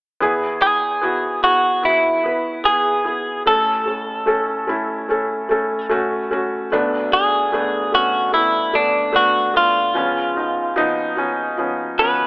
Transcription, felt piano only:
0.20 E2 E3 B3 E4 G#4
0.61 B3 E4 G#4
1.02 B3 E4 F#4
1.42 B3 E4 G#4
1.82 B3 E4 F#4
2.23 B3 E4 B4
2.64 B3 E4 G#4
3.04 B3 E4 G#4
3.46 A1 A2 A3 C#4 A4
3.86 A3 C#4 A4
4.26 A3 C#4 A4
4.67 A3 C#4 E4
5.09 A3 C#4 A4
5.49 A3 C#4 A4
5.89 A3 C#4 F#4
6.31 A3 C#4 F#4
6.72 B1 B2 A3 B3 D4
7.12 A3 B3 D4
7.52 A3 B3 D4
7.92 A3 B3 C#4
8.32 A3 B3 E4
8.73 A3 B3 D4
9.12 A3 B3 D4
9.53 A3 B3 D4
9.94 C#2 C#3 F3 B3 C#4
10.35 F3 B3 D#4
10.76 F3 B3 D#4
11.16 F3 B3 C#4
11.57 F3 B3 C#4
11.98 F3 B3 C#4

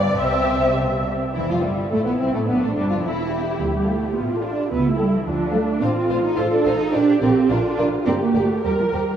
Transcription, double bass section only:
Already playing: G1
0.19 C2
1.35 E1
1.49 F1
1.64 G1
1.92 A1
2.06 B1
2.20 C2
2.34 A1
2.48 B1
2.62 A1
2.77 G1
2.91 F1
3.04 E1
3.60 D2
4.16 A1
4.71 C#2
5.26 D2
5.82 A1
6.10 A1
6.38 A1
6.66 A1
6.94 A#1
7.22 A#1
7.50 A#1
7.78 A#1
8.07 G1
8.35 G1
8.64 D#2
8.93 D#2

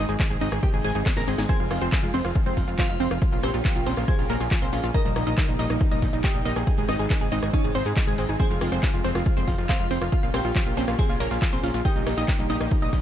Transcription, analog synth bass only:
0.09 G#1
0.30 G#1
0.41 G#1
0.52 G#1
0.74 G#1
0.84 G#1
0.95 G#1
1.17 G#1
1.28 G#1
1.38 G#1
1.60 F1
1.71 F1
1.82 F1
2.03 F1
2.14 F1
2.25 F1
2.46 F1
2.57 F1
2.68 F1
2.89 F1
3.00 F1
3.11 F1
3.33 A#1
3.43 A#1
3.54 A#1
3.76 A#1
3.87 A#1
3.97 A#1
4.19 A#1
4.30 A#1
4.41 A#1
4.62 A#1
4.73 A#1
4.84 A#1
5.05 A#1
5.16 A#1
5.27 A#1
5.48 A#1
5.59 A#1
5.70 A#1
5.91 A#1
6.02 A#1
6.13 A#1
6.35 A#1
6.45 A#1
6.56 A#1
6.78 G#1
6.89 G#1
6.99 G#1
7.21 G#1
7.32 G#1
7.43 G#1
7.64 G#1
7.75 G#1
7.86 G#2
8.07 G#1
8.18 G#1
8.29 G#1
8.50 F1
8.61 F1
8.72 F1
8.94 F1
9.04 F1
9.15 F1
9.37 F1
9.48 F1
9.58 F1
9.80 F1
9.91 F1
10.01 F1
10.23 A#1
10.34 A#1
10.45 A#1
10.66 A#1
10.77 A#1
10.88 A#1
11.09 A#1
11.20 A#1
11.31 A#1
11.53 A#1
11.63 A#1
11.74 A#1
11.96 A#1
12.07 A#1
12.17 A#1
12.39 A#1
12.50 A#1
12.61 A#1
12.82 A#1
12.93 A#1

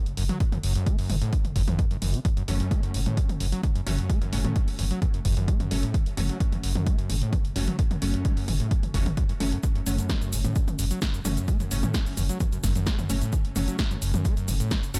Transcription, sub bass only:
0.06 F#1
0.17 F#1
0.52 F#1
0.63 F#1
0.99 F#1
1.10 F#1
1.45 F#1
1.56 F#1
1.91 F#1
2.02 F#1
2.37 F#1
2.48 F#1
2.83 F#1
2.94 F#1
3.29 F#1
3.40 F#1
3.75 F#1
3.86 F#1
4.22 F#1
4.33 F#1
4.68 F#1
4.79 F#1
5.14 F#1
5.25 F#1
5.60 F#1
5.71 F#1
6.06 F#1
6.17 F#1
6.52 F#1
6.63 F#1
6.99 F#1
7.10 F#1
7.45 F#1
7.56 F#1
7.91 F#1
8.02 F#1
8.37 F#1
8.48 F#1
8.83 F#1
8.94 F#1
9.29 F#1
9.40 F#1
9.75 F#1
9.86 F#1
10.21 F#1
10.33 F#1
10.68 F#1
10.79 F#1
11.14 F#1
11.25 F#1
11.60 F#1
11.71 F#1
12.06 F#1
12.17 F#1
12.52 F#1
12.63 F#1
12.99 F#1
13.10 F#1
13.45 F#1
13.56 F#1
13.91 F#1
14.02 F#1
14.37 F#1
14.48 F#1
14.83 F#1
14.94 F#1

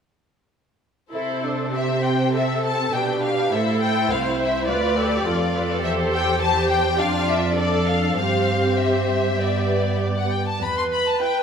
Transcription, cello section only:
1.14 C3
2.93 B2
3.52 A2
4.11 C2
4.69 D2
5.26 F2
5.84 E2
6.99 F2
8.18 G2
9.39 G2
10.61 E2

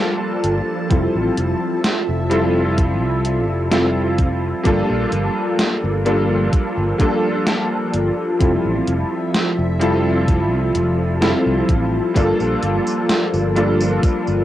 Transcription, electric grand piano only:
Already playing: G3 A#3 D4 F4 A4
0.89 G3 C4 E4 F4 A4
2.30 G3 C4 E4 F4 A4
3.71 G3 C4 E4 F4 A4
4.63 G3 A#3 D4 F4 A4
6.05 G3 A#3 D4 F4 A4
6.98 G3 A#3 D4 F4 A4
8.39 G3 C4 E4 F4 A4
9.80 G3 C4 E4 F4 A4
11.21 G3 C4 E4 F4 A4
12.14 G3 A#3 D4 F4 A4
13.55 G3 A#3 D4 F4 A4

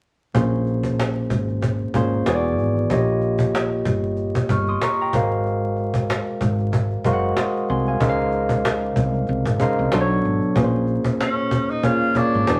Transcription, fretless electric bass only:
0.35 A#1
1.31 G#1
1.95 G#1
2.27 E1
2.59 G#1
2.91 A#1
3.86 G1
4.50 G1
5.14 G#1
6.41 G#1
7.05 F#1
7.70 C2
8.01 C#2
8.97 C2
9.29 C2
9.46 G#1
9.79 C2
9.93 B1
10.25 G#1
10.56 A#1
11.05 muted fretless electric bass stroke
12.16 muted fretless electric bass stroke
12.35 G#1
12.49 E1

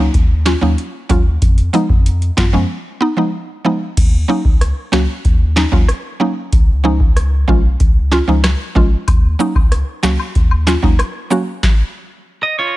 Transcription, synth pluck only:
Already playing: F#3
0.00 A#3 C#4 D#4
0.46 C#4 F4
0.61 F#3 A#3 C#4 D#4
1.09 F#3 A#3 C#4 F4
1.73 F3 G#3 B3 D#4
2.37 B3 F4
2.53 F3 G#3 B3 C#4
3.01 B3 D#4
3.17 F3 G#3 B3 D#4
3.65 F3 G#3 B3 D#4
4.28 F#3 A#3 C#4 D#4
4.92 F#3 A#3 C#4 F#4
5.56 C#4 D#4
5.72 F#3 A#3 C#4 F4
6.20 F#3 A#3 C#4 D#4
6.84 F3 G#3 C#4 D#4
7.48 F3 G#3 C#4 F4
8.12 C#4 F4
8.28 F3 G#3 C#4 D#4
8.75 F3 G#3 C#4 F4
9.39 F#3 A#3 C#4 D#4
10.03 F#3 A#3 C#4 F#4
10.67 C#4 F4
10.83 F#3 A#3 C#4 D#4
11.30 F#3 A#3 C#4 F#4

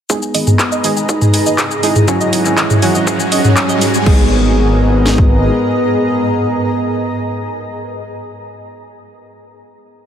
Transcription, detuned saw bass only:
0.34 G#1
0.47 G#1
0.84 G#1
0.97 G#1
1.33 G#1
1.46 D#2
1.83 G#1
1.96 G#1
2.33 G#1
2.45 G#1
2.82 G#1
2.95 G#1
3.32 G#1
3.44 D#2
3.81 G#1
3.94 G#1
4.06 G#1

